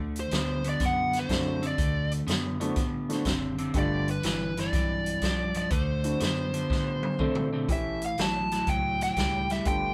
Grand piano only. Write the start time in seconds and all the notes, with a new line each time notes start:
1.29 A3 C4 D4 E4 F#4
2.60 A3 C4 D4 E4 F#4
3.09 A3 C4 D4 E4 F#4
3.74 A3 B3 D4 F4 G4
6.04 A3 C4 D4 E4 F#4
7.19 A3 C4 D4 E4 A4
7.69 A3 B3 C#4 E4 G4
9.65 A3 B3 D4 F4 G4